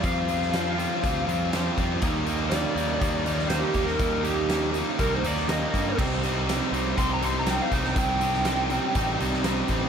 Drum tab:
CC |----------------|----------------|----------------|x---------------|
HH |x-x-x-x-x-x-x-x-|x-x-x-x-x-x-x-x-|x-x-x-x-x-x-x-x-|--x-x-x-x-x-x-x-|
SD |---oo-------o---|----o------oo--o|----o------oo---|----o-------o--o|
BD |o-------o-----o-|o-------o-----o-|o-------o-----o-|o-------o-----o-|

CC |----------------|
HH |x-x-x-x-x-x-x-x-|
SD |---oo------oo---|
BD |o-------o-----o-|